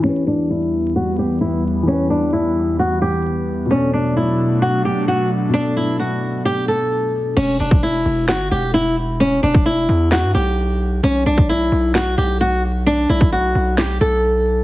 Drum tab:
CC |----------------|----------------|----------------|----------------|
CP |----------------|----------------|----------------|----------------|
SD |----------------|----------------|----------------|----------------|
BD |----------------|----------------|----------------|----------------|

CC |x---------------|----------------|----------------|----------------|
CP |--------x-------|--------x-------|--------x-------|--------x-------|
SD |--------o-------|--------o-------|--------o-------|--------o-------|
BD |---o------------|---o------------|---o------------|---o------------|